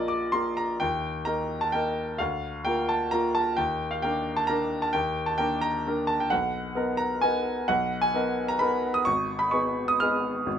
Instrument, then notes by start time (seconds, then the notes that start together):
grand piano
Already playing: A#1 A#3 F4 A#4 D5 D#5
0.08 D6
0.32 A#3 F4 A#4 C6
0.57 A#5
0.80 D#2 G5
1.25 A#3 D#4 A#4 A#5
1.61 A5
1.72 A#3 D#4 A#4 G5
2.18 D2 F5
2.65 A#3 F4 A#4 G5
2.89 A5
3.11 A#3 F4 A#4 A#5
3.35 A5
3.57 D#2 G5
3.91 F5
4.02 A#3 D4 A#4 G5
4.37 A5
4.47 A#3 D4 A#4 A#5
4.82 A5
4.93 D#2 G5
5.26 A5
5.38 A#3 D4 A#4 G5
5.61 A#5
5.87 A#3 D4 A#4
6.07 A5
6.20 G5
6.30 B1 F#5
6.75 B3 D#4 A#4
6.97 A#5
7.21 B3 D#4 A#4 G#5
7.68 B1 F#5
8.01 G#5
8.14 B3 D#4 A#4
8.48 A#5
8.59 B3 D#4 A#4 B5
8.94 D#6
9.05 G#1 C#6
9.39 B5
9.51 B3 D#4 G#4 C#6
9.88 D#6
10.00 B3 D#4 G#4 F6
10.46 G#1